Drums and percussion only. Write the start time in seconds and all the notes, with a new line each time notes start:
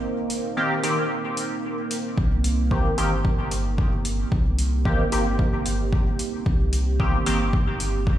0.30 open hi-hat
0.84 open hi-hat
1.37 open hi-hat
1.91 open hi-hat
2.18 kick
2.44 open hi-hat
2.71 kick
2.98 open hi-hat
3.25 kick
3.51 open hi-hat
3.78 kick
4.05 open hi-hat
4.32 kick
4.59 open hi-hat
4.85 kick
5.12 open hi-hat
5.39 kick
5.66 open hi-hat
5.93 kick
6.19 open hi-hat
6.46 kick
6.73 open hi-hat
7.00 kick
7.26 open hi-hat
7.53 kick
7.80 open hi-hat
8.07 kick